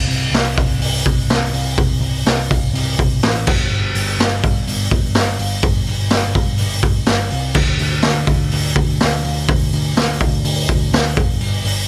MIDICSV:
0, 0, Header, 1, 3, 480
1, 0, Start_track
1, 0, Tempo, 481541
1, 1776, Time_signature, 4, 2, 24, 8
1, 11841, End_track
2, 0, Start_track
2, 0, Title_t, "Picked electric bass"
2, 0, Program_c, 0, 34
2, 74, Note_on_c, 0, 36, 100
2, 309, Note_off_c, 0, 36, 0
2, 315, Note_on_c, 0, 36, 88
2, 549, Note_off_c, 0, 36, 0
2, 576, Note_on_c, 0, 36, 93
2, 784, Note_off_c, 0, 36, 0
2, 790, Note_on_c, 0, 36, 97
2, 1027, Note_off_c, 0, 36, 0
2, 1053, Note_on_c, 0, 36, 95
2, 1280, Note_off_c, 0, 36, 0
2, 1298, Note_on_c, 0, 36, 94
2, 1523, Note_off_c, 0, 36, 0
2, 1527, Note_on_c, 0, 36, 92
2, 1757, Note_off_c, 0, 36, 0
2, 1776, Note_on_c, 0, 36, 102
2, 1993, Note_off_c, 0, 36, 0
2, 1999, Note_on_c, 0, 36, 99
2, 2233, Note_off_c, 0, 36, 0
2, 2247, Note_on_c, 0, 36, 85
2, 2477, Note_off_c, 0, 36, 0
2, 2493, Note_on_c, 0, 36, 92
2, 2721, Note_off_c, 0, 36, 0
2, 2726, Note_on_c, 0, 36, 97
2, 2957, Note_off_c, 0, 36, 0
2, 2976, Note_on_c, 0, 36, 97
2, 3202, Note_off_c, 0, 36, 0
2, 3221, Note_on_c, 0, 33, 93
2, 3445, Note_off_c, 0, 33, 0
2, 3468, Note_on_c, 0, 31, 94
2, 3685, Note_off_c, 0, 31, 0
2, 3691, Note_on_c, 0, 31, 97
2, 3920, Note_off_c, 0, 31, 0
2, 3937, Note_on_c, 0, 31, 97
2, 4163, Note_off_c, 0, 31, 0
2, 4172, Note_on_c, 0, 31, 92
2, 4400, Note_off_c, 0, 31, 0
2, 4430, Note_on_c, 0, 31, 101
2, 4650, Note_off_c, 0, 31, 0
2, 4659, Note_on_c, 0, 31, 96
2, 4884, Note_off_c, 0, 31, 0
2, 4898, Note_on_c, 0, 31, 94
2, 5123, Note_off_c, 0, 31, 0
2, 5131, Note_on_c, 0, 31, 90
2, 5360, Note_off_c, 0, 31, 0
2, 5372, Note_on_c, 0, 31, 90
2, 5600, Note_off_c, 0, 31, 0
2, 5616, Note_on_c, 0, 31, 103
2, 5842, Note_off_c, 0, 31, 0
2, 5866, Note_on_c, 0, 31, 101
2, 6087, Note_off_c, 0, 31, 0
2, 6098, Note_on_c, 0, 31, 93
2, 6323, Note_off_c, 0, 31, 0
2, 6332, Note_on_c, 0, 31, 96
2, 6559, Note_off_c, 0, 31, 0
2, 6586, Note_on_c, 0, 31, 100
2, 6799, Note_off_c, 0, 31, 0
2, 6805, Note_on_c, 0, 31, 92
2, 7035, Note_off_c, 0, 31, 0
2, 7068, Note_on_c, 0, 31, 95
2, 7287, Note_off_c, 0, 31, 0
2, 7297, Note_on_c, 0, 36, 85
2, 7515, Note_off_c, 0, 36, 0
2, 7521, Note_on_c, 0, 38, 101
2, 7753, Note_off_c, 0, 38, 0
2, 7774, Note_on_c, 0, 38, 98
2, 7999, Note_off_c, 0, 38, 0
2, 8024, Note_on_c, 0, 38, 90
2, 8236, Note_off_c, 0, 38, 0
2, 8242, Note_on_c, 0, 38, 90
2, 8473, Note_off_c, 0, 38, 0
2, 8500, Note_on_c, 0, 38, 98
2, 8719, Note_off_c, 0, 38, 0
2, 8725, Note_on_c, 0, 38, 94
2, 8954, Note_off_c, 0, 38, 0
2, 8986, Note_on_c, 0, 38, 87
2, 9205, Note_off_c, 0, 38, 0
2, 9219, Note_on_c, 0, 38, 91
2, 9441, Note_off_c, 0, 38, 0
2, 9463, Note_on_c, 0, 38, 99
2, 9683, Note_off_c, 0, 38, 0
2, 9699, Note_on_c, 0, 38, 100
2, 9921, Note_off_c, 0, 38, 0
2, 9925, Note_on_c, 0, 38, 90
2, 10153, Note_off_c, 0, 38, 0
2, 10172, Note_on_c, 0, 38, 99
2, 10397, Note_off_c, 0, 38, 0
2, 10411, Note_on_c, 0, 38, 101
2, 10636, Note_off_c, 0, 38, 0
2, 10653, Note_on_c, 0, 38, 90
2, 10877, Note_off_c, 0, 38, 0
2, 10886, Note_on_c, 0, 38, 94
2, 11113, Note_off_c, 0, 38, 0
2, 11143, Note_on_c, 0, 31, 94
2, 11362, Note_off_c, 0, 31, 0
2, 11371, Note_on_c, 0, 31, 104
2, 11596, Note_off_c, 0, 31, 0
2, 11608, Note_on_c, 0, 31, 105
2, 11834, Note_off_c, 0, 31, 0
2, 11841, End_track
3, 0, Start_track
3, 0, Title_t, "Drums"
3, 104, Note_on_c, 9, 46, 66
3, 203, Note_off_c, 9, 46, 0
3, 337, Note_on_c, 9, 46, 90
3, 344, Note_on_c, 9, 38, 119
3, 436, Note_off_c, 9, 46, 0
3, 443, Note_off_c, 9, 38, 0
3, 574, Note_on_c, 9, 36, 93
3, 579, Note_on_c, 9, 46, 71
3, 674, Note_off_c, 9, 36, 0
3, 679, Note_off_c, 9, 46, 0
3, 813, Note_on_c, 9, 46, 102
3, 913, Note_off_c, 9, 46, 0
3, 1054, Note_on_c, 9, 46, 71
3, 1055, Note_on_c, 9, 36, 94
3, 1154, Note_off_c, 9, 46, 0
3, 1155, Note_off_c, 9, 36, 0
3, 1292, Note_on_c, 9, 46, 96
3, 1299, Note_on_c, 9, 38, 111
3, 1392, Note_off_c, 9, 46, 0
3, 1399, Note_off_c, 9, 38, 0
3, 1531, Note_on_c, 9, 46, 76
3, 1631, Note_off_c, 9, 46, 0
3, 1768, Note_on_c, 9, 46, 97
3, 1773, Note_on_c, 9, 36, 114
3, 1868, Note_off_c, 9, 46, 0
3, 1873, Note_off_c, 9, 36, 0
3, 2017, Note_on_c, 9, 46, 75
3, 2116, Note_off_c, 9, 46, 0
3, 2253, Note_on_c, 9, 46, 94
3, 2260, Note_on_c, 9, 38, 121
3, 2353, Note_off_c, 9, 46, 0
3, 2360, Note_off_c, 9, 38, 0
3, 2501, Note_on_c, 9, 36, 87
3, 2504, Note_on_c, 9, 46, 68
3, 2600, Note_off_c, 9, 36, 0
3, 2603, Note_off_c, 9, 46, 0
3, 2742, Note_on_c, 9, 46, 101
3, 2842, Note_off_c, 9, 46, 0
3, 2981, Note_on_c, 9, 36, 94
3, 2986, Note_on_c, 9, 46, 67
3, 3081, Note_off_c, 9, 36, 0
3, 3086, Note_off_c, 9, 46, 0
3, 3215, Note_on_c, 9, 46, 89
3, 3222, Note_on_c, 9, 38, 121
3, 3315, Note_off_c, 9, 46, 0
3, 3322, Note_off_c, 9, 38, 0
3, 3457, Note_on_c, 9, 49, 120
3, 3463, Note_on_c, 9, 36, 119
3, 3557, Note_off_c, 9, 49, 0
3, 3562, Note_off_c, 9, 36, 0
3, 3937, Note_on_c, 9, 46, 69
3, 4036, Note_off_c, 9, 46, 0
3, 4183, Note_on_c, 9, 46, 85
3, 4190, Note_on_c, 9, 38, 117
3, 4283, Note_off_c, 9, 46, 0
3, 4290, Note_off_c, 9, 38, 0
3, 4419, Note_on_c, 9, 46, 68
3, 4422, Note_on_c, 9, 36, 90
3, 4519, Note_off_c, 9, 46, 0
3, 4522, Note_off_c, 9, 36, 0
3, 4657, Note_on_c, 9, 46, 96
3, 4757, Note_off_c, 9, 46, 0
3, 4895, Note_on_c, 9, 46, 72
3, 4898, Note_on_c, 9, 36, 93
3, 4995, Note_off_c, 9, 46, 0
3, 4998, Note_off_c, 9, 36, 0
3, 5128, Note_on_c, 9, 46, 97
3, 5135, Note_on_c, 9, 38, 121
3, 5228, Note_off_c, 9, 46, 0
3, 5235, Note_off_c, 9, 38, 0
3, 5373, Note_on_c, 9, 46, 74
3, 5473, Note_off_c, 9, 46, 0
3, 5602, Note_on_c, 9, 46, 92
3, 5613, Note_on_c, 9, 36, 122
3, 5701, Note_off_c, 9, 46, 0
3, 5712, Note_off_c, 9, 36, 0
3, 5846, Note_on_c, 9, 46, 71
3, 5946, Note_off_c, 9, 46, 0
3, 6081, Note_on_c, 9, 46, 98
3, 6088, Note_on_c, 9, 38, 127
3, 6181, Note_off_c, 9, 46, 0
3, 6188, Note_off_c, 9, 38, 0
3, 6329, Note_on_c, 9, 46, 74
3, 6331, Note_on_c, 9, 36, 85
3, 6428, Note_off_c, 9, 46, 0
3, 6431, Note_off_c, 9, 36, 0
3, 6554, Note_on_c, 9, 46, 96
3, 6654, Note_off_c, 9, 46, 0
3, 6800, Note_on_c, 9, 46, 68
3, 6808, Note_on_c, 9, 36, 92
3, 6899, Note_off_c, 9, 46, 0
3, 6907, Note_off_c, 9, 36, 0
3, 7038, Note_on_c, 9, 46, 95
3, 7045, Note_on_c, 9, 38, 125
3, 7138, Note_off_c, 9, 46, 0
3, 7145, Note_off_c, 9, 38, 0
3, 7280, Note_on_c, 9, 46, 72
3, 7380, Note_off_c, 9, 46, 0
3, 7521, Note_on_c, 9, 49, 109
3, 7526, Note_on_c, 9, 36, 113
3, 7621, Note_off_c, 9, 49, 0
3, 7626, Note_off_c, 9, 36, 0
3, 7764, Note_on_c, 9, 46, 68
3, 7864, Note_off_c, 9, 46, 0
3, 7996, Note_on_c, 9, 46, 86
3, 8003, Note_on_c, 9, 38, 118
3, 8095, Note_off_c, 9, 46, 0
3, 8102, Note_off_c, 9, 38, 0
3, 8244, Note_on_c, 9, 46, 65
3, 8247, Note_on_c, 9, 36, 89
3, 8343, Note_off_c, 9, 46, 0
3, 8347, Note_off_c, 9, 36, 0
3, 8488, Note_on_c, 9, 46, 95
3, 8587, Note_off_c, 9, 46, 0
3, 8726, Note_on_c, 9, 46, 70
3, 8730, Note_on_c, 9, 36, 96
3, 8826, Note_off_c, 9, 46, 0
3, 8830, Note_off_c, 9, 36, 0
3, 8972, Note_on_c, 9, 46, 85
3, 8979, Note_on_c, 9, 38, 121
3, 9072, Note_off_c, 9, 46, 0
3, 9079, Note_off_c, 9, 38, 0
3, 9216, Note_on_c, 9, 46, 70
3, 9315, Note_off_c, 9, 46, 0
3, 9456, Note_on_c, 9, 36, 123
3, 9459, Note_on_c, 9, 46, 95
3, 9556, Note_off_c, 9, 36, 0
3, 9558, Note_off_c, 9, 46, 0
3, 9698, Note_on_c, 9, 46, 73
3, 9797, Note_off_c, 9, 46, 0
3, 9934, Note_on_c, 9, 46, 102
3, 9940, Note_on_c, 9, 38, 117
3, 10033, Note_off_c, 9, 46, 0
3, 10040, Note_off_c, 9, 38, 0
3, 10169, Note_on_c, 9, 46, 68
3, 10175, Note_on_c, 9, 36, 93
3, 10269, Note_off_c, 9, 46, 0
3, 10275, Note_off_c, 9, 36, 0
3, 10413, Note_on_c, 9, 46, 105
3, 10513, Note_off_c, 9, 46, 0
3, 10656, Note_on_c, 9, 36, 90
3, 10656, Note_on_c, 9, 46, 73
3, 10755, Note_off_c, 9, 36, 0
3, 10756, Note_off_c, 9, 46, 0
3, 10898, Note_on_c, 9, 46, 97
3, 10905, Note_on_c, 9, 38, 126
3, 10997, Note_off_c, 9, 46, 0
3, 11004, Note_off_c, 9, 38, 0
3, 11135, Note_on_c, 9, 36, 117
3, 11141, Note_on_c, 9, 46, 75
3, 11235, Note_off_c, 9, 36, 0
3, 11241, Note_off_c, 9, 46, 0
3, 11371, Note_on_c, 9, 46, 95
3, 11471, Note_off_c, 9, 46, 0
3, 11609, Note_on_c, 9, 46, 72
3, 11709, Note_off_c, 9, 46, 0
3, 11841, End_track
0, 0, End_of_file